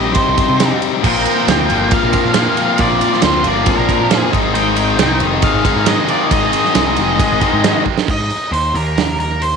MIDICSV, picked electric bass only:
0, 0, Header, 1, 2, 480
1, 0, Start_track
1, 0, Tempo, 440529
1, 1131, Time_signature, 4, 2, 24, 8
1, 10422, End_track
2, 0, Start_track
2, 0, Title_t, "Picked electric bass"
2, 0, Program_c, 0, 34
2, 0, Note_on_c, 0, 34, 88
2, 158, Note_off_c, 0, 34, 0
2, 304, Note_on_c, 0, 36, 83
2, 411, Note_off_c, 0, 36, 0
2, 535, Note_on_c, 0, 48, 80
2, 760, Note_off_c, 0, 48, 0
2, 1134, Note_on_c, 0, 34, 102
2, 1358, Note_off_c, 0, 34, 0
2, 1612, Note_on_c, 0, 38, 87
2, 1837, Note_off_c, 0, 38, 0
2, 1855, Note_on_c, 0, 31, 85
2, 2078, Note_off_c, 0, 31, 0
2, 2215, Note_on_c, 0, 34, 76
2, 2324, Note_off_c, 0, 34, 0
2, 2447, Note_on_c, 0, 46, 85
2, 2673, Note_off_c, 0, 46, 0
2, 3044, Note_on_c, 0, 34, 116
2, 3270, Note_off_c, 0, 34, 0
2, 3522, Note_on_c, 0, 38, 100
2, 3748, Note_off_c, 0, 38, 0
2, 3761, Note_on_c, 0, 31, 86
2, 3987, Note_off_c, 0, 31, 0
2, 4121, Note_on_c, 0, 34, 85
2, 4234, Note_off_c, 0, 34, 0
2, 4358, Note_on_c, 0, 46, 84
2, 4585, Note_off_c, 0, 46, 0
2, 4722, Note_on_c, 0, 32, 104
2, 5397, Note_off_c, 0, 32, 0
2, 5431, Note_on_c, 0, 36, 92
2, 5660, Note_off_c, 0, 36, 0
2, 5670, Note_on_c, 0, 29, 93
2, 5899, Note_off_c, 0, 29, 0
2, 6034, Note_on_c, 0, 32, 80
2, 6148, Note_off_c, 0, 32, 0
2, 6280, Note_on_c, 0, 44, 96
2, 6504, Note_off_c, 0, 44, 0
2, 6879, Note_on_c, 0, 32, 104
2, 7104, Note_off_c, 0, 32, 0
2, 7362, Note_on_c, 0, 36, 90
2, 7586, Note_off_c, 0, 36, 0
2, 7611, Note_on_c, 0, 29, 80
2, 7831, Note_off_c, 0, 29, 0
2, 7973, Note_on_c, 0, 32, 81
2, 8079, Note_off_c, 0, 32, 0
2, 8208, Note_on_c, 0, 44, 87
2, 8430, Note_off_c, 0, 44, 0
2, 8808, Note_on_c, 0, 44, 101
2, 9032, Note_off_c, 0, 44, 0
2, 9278, Note_on_c, 0, 39, 94
2, 9508, Note_off_c, 0, 39, 0
2, 9525, Note_on_c, 0, 39, 88
2, 10422, Note_off_c, 0, 39, 0
2, 10422, End_track
0, 0, End_of_file